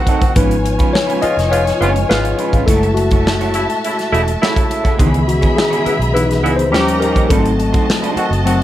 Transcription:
Already playing: horn section D#3 C4 F#4, tine electric piano F#3 A3 C4 A4, string section D#4 C5 F#5
0.07 clean electric guitar F#3 C4 D#4 A4, kick, closed hi-hat
0.22 muted clean electric guitar stroke, kick, closed hi-hat
0.35 fingered electric bass G#1, tine electric piano F3 B3 D#4 B4, clean electric guitar G#3 C#4 F4 B4, string section F4 C#5 G#5, kick, closed hi-hat
0.51 closed hi-hat
0.65 muted clean electric guitar stroke, closed hi-hat
0.79 clean electric guitar G#3 C#4 F4 B4, kick, closed hi-hat
0.93 tine electric piano C#5, muted clean electric guitar stroke, snare
1.07 clean electric guitar G#3 C#4 F4 B4, closed hi-hat
1.22 horn section C#3 B3 F4, tine electric piano D#5, muted clean electric guitar stroke, muted fingered electric bass stroke, closed hi-hat
1.37 fingered electric bass F1, muted clean electric guitar stroke, snare, closed hi-hat
1.51 horn section C#3 B3 F4, tine electric piano C#5, closed hi-hat
1.66 muted clean electric guitar stroke, snare, closed hi-hat
1.80 fingered electric bass F#1, horn section C#3 B3 F4, clean electric guitar G#3 C#4 F4 C#5, closed hi-hat
1.96 muted clean electric guitar stroke, closed hi-hat
2.09 fingered electric bass G#1, horn section C#3 B3 F4, tine electric piano B4, muted clean electric guitar stroke, snare
2.25 muted clean electric guitar stroke, closed hi-hat
2.39 clean electric guitar G#3 C#4 F4 B4, closed hi-hat
2.53 fingered electric bass A1, clean electric guitar G#3 C#4 F4 B4, kick, closed hi-hat
2.66 fingered electric bass F#1, tine electric piano G#3 A3 E4 A4, clean electric guitar A3 E4 F#4 C#5, string section F#4 E5 A5, kick, closed hi-hat
2.83 closed hi-hat
2.94 tine electric piano F#4, muted clean electric guitar stroke, closed hi-hat
3.11 clean electric guitar A3 E4 F#4 C#5, kick, closed hi-hat
3.26 muted clean electric guitar stroke, snare
3.41 clean electric guitar A3 E4 F#4 C#5, closed hi-hat
3.54 horn section C#3 A3 E4, muted clean electric guitar stroke, closed hi-hat
3.69 muted clean electric guitar stroke, closed hi-hat
3.84 horn section C#3 A3 E4, closed hi-hat
3.98 muted clean electric guitar stroke, snare, closed hi-hat
4.12 fingered electric bass E1, horn section C#3 A3 E4, clean electric guitar A3 E4 F#4 D#5, closed hi-hat
4.27 muted clean electric guitar stroke, closed hi-hat
4.42 horn section C#3 A3 E4, clean electric guitar A3 E4 F#4 C#5, snare
4.56 kick, closed hi-hat
4.70 muted clean electric guitar stroke, closed hi-hat
4.84 clean electric guitar A3 E4 F#4 C#5, kick, closed hi-hat
4.98 fingered electric bass C#2, tonewheel organ C#3 G#3 B3 E5, tine electric piano D#3 E3 B3, clean electric guitar B3 E4 G#4 C#5, string section G#4 E5 B5, kick, closed hi-hat
5.14 closed hi-hat
5.27 tine electric piano F#4, muted clean electric guitar stroke, closed hi-hat
5.41 clean electric guitar B3 E4 G#4 C#5, kick, closed hi-hat
5.56 tine electric piano G#4, muted clean electric guitar stroke, snare
5.70 clean electric guitar B3 E4 G#4 C#5, closed hi-hat
5.85 horn section C#3 B3 E4, muted clean electric guitar stroke, muted fingered electric bass stroke, closed hi-hat
5.99 fingered electric bass B1, muted clean electric guitar stroke, closed hi-hat
6.14 horn section C#3 B3 E4, tine electric piano E3 B3 D#4 B4, closed hi-hat
6.29 muted clean electric guitar stroke, snare, closed hi-hat
6.42 fingered electric bass C#2, horn section C#3 B3 E4, clean electric guitar B3 E4 G#4 D#5, closed hi-hat
6.56 tine electric piano C5, muted clean electric guitar stroke, closed hi-hat
6.71 fingered electric bass D#2, horn section D#3 C#4 G4, tonewheel organ D#3 A#3 C#4 G4, tine electric piano F3 G3 C#4, string section G4 D#5 A#5, muted clean electric guitar stroke, snare
6.87 muted clean electric guitar stroke, closed hi-hat
7.00 clean electric guitar A#3 D#4 G4 C#5, tine electric piano A#4, closed hi-hat
7.15 clean electric guitar A#3 D#4 G4 C#5, kick, closed hi-hat
7.29 fingered electric bass G#1, tine electric piano F#3 A3 C4 A4, clean electric guitar A3 D#4 F#4 C5, tonewheel organ A3 F#4, string section F#4 D#5 A5, kick, closed hi-hat
7.33 tonewheel organ C4
7.46 closed hi-hat
7.58 muted clean electric guitar stroke, closed hi-hat
7.73 clean electric guitar A3 D#4 F#4 C5, kick, closed hi-hat
7.90 snare
8.02 clean electric guitar A3 D#4 F#4 C5, closed hi-hat
8.16 horn section D#3 C4 F#4, muted fingered electric bass stroke, muted clean electric guitar stroke, closed hi-hat
8.30 fingered electric bass F#1, muted clean electric guitar stroke, closed hi-hat
8.46 horn section D#3 C4 F#4, tine electric piano F#3 A3 C4, closed hi-hat
8.60 muted clean electric guitar stroke

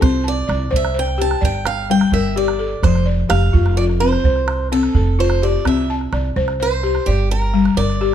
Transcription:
Already playing: balafon G4
0.01 upright bass C2, balafon C4, steel-string acoustic guitar C5, calabash thump, calabash click
0.24 balafon A5
0.28 steel-string acoustic guitar D5
0.48 upright bass C2, balafon D5, calabash click
0.71 upright bass C2, balafon C5, calabash thump
0.76 steel-string acoustic guitar E5
0.85 calabash click
0.94 balafon C5, calabash click
0.99 steel-string acoustic guitar G5
1.08 calabash click
1.18 balafon G4, steel-string acoustic guitar A5, calabash click
1.31 calabash click
1.41 upright bass G1, balafon D5, steel-string acoustic guitar G5, calabash thump
1.55 calabash click
1.66 steel-string acoustic guitar F5, calabash click
1.90 balafon G3, steel-string acoustic guitar G5
2.01 calabash click
2.12 upright bass G1, balafon A#4, steel-string acoustic guitar E5, calabash thump, calabash click
2.36 balafon G4, steel-string acoustic guitar D5
2.48 calabash click
2.59 balafon A4
2.83 upright bass F1, balafon F3, steel-string acoustic guitar C5, calabash thump, calabash click
2.95 calabash click
3.06 balafon D5
3.29 upright bass F1, balafon G4, steel-string acoustic guitar F5, calabash click
3.53 upright bass F1, balafon F4, calabash thump
3.66 calabash click
3.77 balafon F4, steel-string acoustic guitar D5, calabash click
3.89 calabash click
4.00 balafon C4, steel-string acoustic guitar C5, calabash click
4.12 calabash click
4.24 upright bass C2, balafon C5, calabash thump
4.36 calabash click
4.48 calabash click
4.72 balafon C4, steel-string acoustic guitar A4
4.83 calabash click
4.94 upright bass F1, balafon A4, calabash thump, calabash click
5.19 balafon F4, steel-string acoustic guitar C5
5.30 calabash click
5.42 balafon G4, steel-string acoustic guitar D5
5.65 upright bass C2, balafon C4, steel-string acoustic guitar E5, calabash thump, calabash click
5.77 calabash click
5.90 balafon A5
6.01 calabash click
6.13 upright bass C2, balafon D5, calabash click
6.36 upright bass C2, balafon C5, calabash thump, calabash click
6.48 calabash click
6.60 balafon C5, steel-string acoustic guitar C5
6.83 balafon G4, calabash click
6.95 calabash click
7.06 upright bass G1, steel-string acoustic guitar G4, balafon D5, calabash thump
7.31 steel-string acoustic guitar A#4
7.42 calabash click
7.54 balafon G3
7.65 calabash click
7.77 upright bass G1, balafon A#4, steel-string acoustic guitar D5, calabash thump
7.90 calabash click
8.01 balafon G4, calabash click

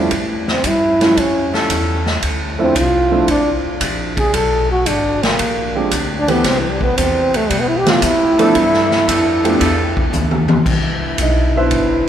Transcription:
Already playing: grand piano C#4 E4
0.11 upright bass A2, kick, ride
0.48 trombone C4, snare
0.64 upright bass G2, trombone E4, kick, hi-hat pedal, ride
1.01 grand piano F3 G3 A3 C#4 E4, snare, ride
1.17 upright bass F2, trombone C#4, kick, ride
1.53 saxophone section G3 C#4 F4 A4, snare
1.70 upright bass E2, kick, hi-hat pedal, ride
2.06 snare
2.22 upright bass D2, kick, ride
2.59 grand piano F3 A3 C4 D4 E4, trombone C4
2.75 upright bass C2, trombone F4, kick, hi-hat pedal, ride
3.11 grand piano F3 A3 C4 D4 E4
3.28 upright bass A1, trombone D4, kick, ride
3.65 muted upright bass stroke
3.81 upright bass A#1, kick, hi-hat pedal, ride
4.17 trombone G#4, kick, ride
4.33 upright bass B1, trombone A4, kick, ride
4.72 trombone F#4
4.86 upright bass G#1, trombone D4, kick, hi-hat pedal, ride
5.23 trombone A#3, snare, ride
5.39 upright bass A#1, kick, ride
5.75 grand piano F3 G#3 C4 D4 G4
5.91 upright bass D2, kick, hi-hat pedal, ride
6.20 trombone D4
6.28 grand piano E3 A3 B3 C4 G4, saxophone section A3 C4 G4 B4, ride
6.33 trombone B3
6.44 upright bass C2, trombone C4, kick, snare, ride
6.59 trombone E3
6.71 trombone G3
6.81 trombone B3, kick
6.97 upright bass E2, trombone C4, kick, hi-hat pedal, ride
7.34 trombone A3, ride
7.50 upright bass B2, trombone G3, kick, ride
7.60 trombone B3
7.68 trombone E4
7.78 trombone G4
7.86 grand piano E3 A3 B3 C4 G4, snare, ride
7.90 trombone F4
8.02 upright bass A2, trombone E4, kick, hi-hat pedal, ride
8.38 saxophone section F3 G3 B3 A4, grand piano F3 A3 B3 D4 A4, ride
8.55 upright bass G2, kick, ride
8.74 snare
8.91 snare
9.08 upright bass F2, saxophone section F3 G3 B3 A4, kick, hi-hat pedal, ride
9.44 grand piano F3 A3 B3 D4 G4, ride
9.59 upright bass E2, saxophone section G3 B3 F4 A4, kick, ride
9.97 kick
10.13 upright bass D2, hi-hat pedal, high tom
10.31 high tom
10.48 high tom
10.66 upright bass C2, saxophone section E3 D4 E4, kick, crash
11.18 upright bass B1, kick, hi-hat pedal, ride
11.22 grand piano D#4 D#5
11.56 grand piano B2 D4 E4 B4 C5 E5
11.71 upright bass G1, kick, ride

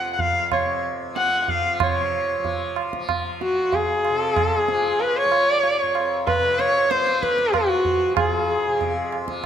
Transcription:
Already playing: tanpura F2 C3 F3, sarangi F#5
0.13 sarangi F#5
0.19 sarangi F5, tabla tin, tabla ge
0.51 tanpura C3, sarangi C#5, tabla na, tabla ge
1.09 tanpura F3
1.16 sarangi F#5, tabla te
1.42 sarangi F#5
1.48 sarangi F5, tabla tin, tabla ge
1.66 tanpura F3
1.80 tanpura C3, sarangi C#5, tabla na, tabla ge
2.39 tanpura F3
2.45 tabla tin, tabla ge
2.76 tabla na
2.93 tanpura F3, tabla ke
3.09 tabla na, tabla ge
3.41 sarangi F#4, tabla te
3.52 tanpura F2
3.73 sarangi G#4, tabla tin, tabla ge
4.05 tabla na
4.10 tanpura C3
4.19 sarangi A4
4.31 sarangi G#4
4.36 tabla na, tabla ge
4.45 sarangi A4
4.57 sarangi G#4
4.67 tanpura F3, tabla te
5.00 sarangi B4, tabla tin
5.17 sarangi C#5
5.25 tanpura F3
5.32 tabla na
5.63 tabla tin
5.83 tanpura F2
5.95 tabla na
6.27 sarangi B4, tabla na, tabla ge
6.39 tanpura C3
6.59 sarangi C#5, tabla te
6.90 sarangi C5, tabla te
6.96 tanpura F3
7.07 tabla te
7.22 sarangi B4, tabla ke
7.38 tabla te
7.53 tanpura F3, sarangi F#4, tabla na, tabla ge
7.85 tabla ge
8.11 tanpura F2
8.17 sarangi G#4, tabla na, tabla ge
8.68 tanpura C3
8.81 tabla tin, tabla ge
9.12 tabla na
9.25 tanpura F3, tabla ke

